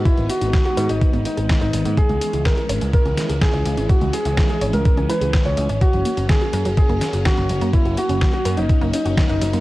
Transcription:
Already playing: D#3 G#3 B3
0.05 E4, kick, closed hi-hat
0.17 G#1 G#3, closed hi-hat
0.29 B3 F#4, closed hi-hat
0.41 G#1 D#4, closed hi-hat
0.53 kick, snare, closed hi-hat
0.65 F#4 G#4, closed hi-hat
0.77 G#2 B4, closed hi-hat
0.89 G#1 G#3 D#4, closed hi-hat
1.01 kick, closed hi-hat
1.13 G#1 B3, closed hi-hat
1.25 D#4, closed hi-hat
1.37 G#1 G#4, closed hi-hat
1.49 kick, snare, closed hi-hat
1.61 G#1 D#4 B4, closed hi-hat
1.73 G#1 G#3, closed hi-hat
1.85 G#2 B3, closed hi-hat
1.97 E3 C#4 G#4, kick, closed hi-hat
2.09 C#2 G#3, closed hi-hat
2.21 C#4, closed hi-hat
2.33 C#2 E4, closed hi-hat
2.45 A#4, kick, snare, closed hi-hat
2.57 G#4, closed hi-hat
2.69 G#1 C#5, closed hi-hat
2.81 C#2 G#3, closed hi-hat
2.93 A#4, kick, closed hi-hat
3.05 C#2 C#4, closed hi-hat
3.17 E4, snare, closed hi-hat
3.29 C#2 G#4, closed hi-hat
3.41 G#4, kick, snare, closed hi-hat
3.53 C#2 C#5, closed hi-hat
3.65 C#2 G#3, closed hi-hat
3.77 G#1 C#4, closed hi-hat
3.89 F#4, kick, closed hi-hat
4.01 C#2 G#3, closed hi-hat
4.13 C#4 G#4, closed hi-hat
4.25 C#2 E4, closed hi-hat
4.37 kick, snare, closed hi-hat
4.49 G#4, closed hi-hat
4.61 G#1 C#5, closed hi-hat
4.73 C#2 G#3 A#4, closed hi-hat
4.85 kick, closed hi-hat
4.97 C#2 C#4, closed hi-hat
5.09 E4 B4, closed hi-hat
5.21 C#2 G#4, closed hi-hat
5.33 kick, snare, closed hi-hat
5.45 C#2 C#5, closed hi-hat
5.57 C#2 G#3, closed hi-hat
5.69 G#1 C#4, closed hi-hat
5.81 F#3 A#3 F#4, kick, closed hi-hat
5.93 F#1 F#3, closed hi-hat
6.05 A#3, closed hi-hat
6.17 F#1 C#4, closed hi-hat
6.29 G#4, kick, snare, closed hi-hat
6.41 F#4, closed hi-hat
6.53 F#2 A#4, closed hi-hat
6.65 F#1 F#3, closed hi-hat
6.77 G#4, kick, closed hi-hat
6.89 F#1 A#3, closed hi-hat
7.01 C#4, snare, closed hi-hat
7.13 F#1 F#4, closed hi-hat
7.25 F#4, kick, snare, closed hi-hat
7.37 F#1 A#4, closed hi-hat
7.49 F#1 F#3, closed hi-hat
7.61 F#2 A#3, closed hi-hat
7.73 E4, kick, closed hi-hat
7.85 F#1 F#3, closed hi-hat
7.97 A#3 F#4, closed hi-hat
8.09 F#1 C#4, closed hi-hat
8.21 kick, snare, closed hi-hat
8.33 F#4, closed hi-hat
8.45 F#2 A#4, closed hi-hat
8.57 F#1 F#3 D#4, closed hi-hat
8.69 kick, closed hi-hat
8.81 F#1 A#3, closed hi-hat
8.93 C#4 D#4, closed hi-hat
9.06 F#1 F#4, closed hi-hat
9.17 kick, snare, closed hi-hat
9.29 F#1 D#4 A#4, closed hi-hat
9.41 F#1 F#3, closed hi-hat
9.53 F#2 A#3, closed hi-hat

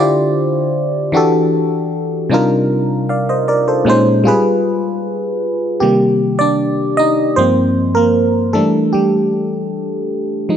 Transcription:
Already playing: D3 D4 E4 F4 C5
0.00 G4 D5
1.12 E3 D4 F#4 G4
1.17 A4
2.30 C3 G3 D4 D#4 F4
2.34 A#4
3.09 D5 F5
3.29 C5 D#5
3.48 A#4 D5
3.68 A4 C5
3.85 A#2 G#3 C#4 D#4
3.89 C5
4.24 G3 F4 G#4
4.28 B4
5.80 C3 D#3 G3 A#3 G4
6.39 D4 D5
6.97 D#4 D#5
7.36 G2 F3 A#3 C4 C5
7.95 A#3 A#4
8.53 E3 G3 A3 D4 A4
8.93 G3 G4
10.49 F3 G#3 D#4

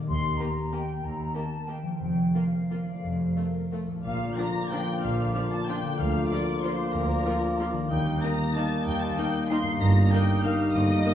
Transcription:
Already playing: D#3 A#3
0.00 G4 D#5
0.08 D#2 C6
0.39 A#3 G4 D#5 A#5
0.72 A#3 G4 D#5 G5
1.03 D#2 A#5
1.34 A#3 G4 D#5 A5
1.68 A#3 G4 D#5 G5
1.83 F3
1.87 A#3
1.92 F4
1.96 C5
2.01 F1 F2 G5
2.34 A#3 F4 A4 F5
2.53 A#4
2.71 A#3 F4
2.86 F3 D5
2.90 A3
2.95 F4
2.99 C5
3.03 F1 F2
3.19 C5
3.36 A3 F4 A#4
3.72 A3 F4
3.87 A#2 A4
3.91 A#3
3.96 F4
4.00 A#3 F4 D5
4.04 A#1 A#2 D3 F3 A#3 F4 D5 F5 F6
4.37 F3 D4 A#5 A#6
4.71 F3 D4 G5 G6
5.02 A#1 A#2 F5 F6
5.35 F3 D4 F5 F6
5.51 A5 A6
5.68 F3 D4 G5 G6
5.82 D3
5.86 A#3
5.91 F4
5.95 D3 A#4 F5
6.00 D2 F3 A#3 F4 D5 F6
6.31 F3 F4 D5 D6
6.63 F3 F4 C5 C6
6.94 D2 A#4 A#5
7.25 F3 F4
7.59 F3 F4
7.73 D#3
7.77 A#3
7.82 D#4
7.86 A#4
7.90 D#2 D#3 G3 A#3 D#4 D#5 G5 G6
8.22 A#3 D#4 A#5 A#6
8.55 A#3 D#4 A5 A6
8.86 D#2 G5 G6
9.00 A5 A6
9.16 A#3 D#4 G5 G6
9.50 A#3 D#4 C6 C7
9.62 G2
9.67 A#3
9.71 D#4
9.76 A#4
9.80 G1 G2 D#3 G3 A#3 D#4 D#5 A#5 A#6
10.11 A#3 D#4 G5 G6
10.44 A#3 D#4 F5 F6
10.73 G1 G2 D#5 D#6
11.05 A#3 D#4

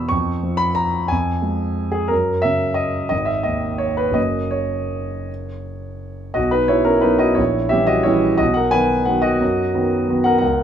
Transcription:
Already playing: E2 B2 B5 E6
0.09 F2 C#6
0.43 F3
0.57 B5
0.75 A#5
1.08 F2 G#5
1.42 G#3
1.92 G#4
2.08 F#2 A#4
2.42 C#3 E5
2.74 D#5
3.09 G#1 D#5
3.25 E5
3.43 D#2 D#5
3.78 C#5
3.97 B4
4.11 F#1 F#3 A#3 C#4 D#5
4.51 C#5
6.34 B1 F#4 D#5
6.51 D#4 B4
6.68 F#3 B3 E4 C#5
6.85 C#4 A#4
7.01 F#3 B3 D#4 B4
7.19 F#4 D#5
7.35 A#1 E4 C#5
7.69 E3 G3 C#4 G4 E5
7.87 F#4 D#5
8.03 E3 G3 C#4 E4 C#5
8.38 B1 F#4 D#5
8.54 A#4 F#5
8.71 D#3 F#3 B3 B4 G#5
9.05 D#3 F#3 B3 B4 F#5
9.22 F#4 D#5
9.41 F#2
9.74 D#3 F#3 B3
10.09 D#3 F#3 B3
10.24 A#4 F#5
10.38 C#2 A#4 F#5

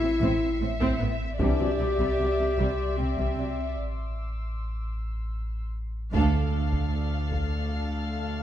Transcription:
Already playing: A1 E4 E5 C7 C#7
0.01 A2 C4
0.21 A1 A2 C4, taiko
0.60 A1 A2 C4
0.80 A2 C4, taiko
1.00 A1 A2 B3
1.39 C2 C3 E3 G3 D4 G4 D5 E5 C6 D6, taiko
1.60 C3 F#3
1.80 C2 C3 G3
1.98 C3 G3, taiko
2.19 C2 C3 F#3
2.39 C3 G3
2.57 C2 C3 G3, taiko
2.97 C2 C3 G3 C4 E6
3.17 C3 G3, taiko
3.37 C2 C3 F#3
3.77 A1
6.13 D2 D4 A4 F5 F6 A6 C7, taiko
6.72 taiko
7.32 taiko

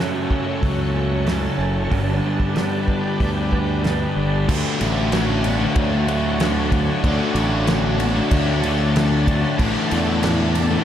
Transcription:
Already playing: F#2 C#3 F#4 A4 C#5 A5
0.00 C#3 F#3 A3 C#4
0.31 kick
0.61 C#2 F#2 C#3 F#3, kick, open hi-hat
0.94 F#3 A3 C#4
1.26 F#2 C#3 F#3 A3 C#4, snare, open hi-hat
1.58 F#1 F#3 A3 C#4
1.90 G1 G2 D3 G3 B3 D4 G4 B4 D5, kick, open hi-hat
2.23 G3 B3 D4
2.40 kick
2.53 G2 D3 G3 B3 D4, snare, open hi-hat
2.58 G3
2.88 kick
3.20 D2 G2 D3 G3, kick, open hi-hat
3.51 G3 B3 D4, kick
3.82 G2 D3 G3 B3, snare, open hi-hat
3.87 D4
4.15 G1 G3 B3 D4
4.46 D2 D3 F#3 A3 D4 F#4 C#5 D5 A5, kick, crash
4.80 A1 D3 A3 D4, snare, ride
5.11 D3 A3 D4, snare, ride
5.26 A3 D4
5.43 muted distorted electric guitar stroke, ride
5.59 A3 D4
5.76 D2, kick, ride
5.91 A3 D4
6.06 D3 A3 D4, ride
6.39 D3 A3 D4, snare, ride
6.55 A3 D4
6.71 D3 A3 D4, kick, ride
7.03 D2 D3 F#3 A3 D4, kick, ride
7.34 A1 D3 A3 D4, snare, ride
7.66 D3 A3 D4, snare, ride
7.83 A3 D4
7.99 muted distorted electric guitar stroke, ride
8.15 A3 D4
8.31 D2, kick, ride
8.46 A3 D4
8.62 D3 A3 D4, ride
8.94 D3 A3 D4, snare, ride
9.10 A3 D4
9.26 D3 A3 D4, kick, ride
9.57 A1 A2 D3 E3 A3 D4 E4 A4, kick, ride
9.89 E2 A2 E3 A3, snare, ride
10.21 A2 E3 A3, snare, ride
10.38 E3 A3
10.55 muted distorted electric guitar stroke, ride
10.70 E3 A3

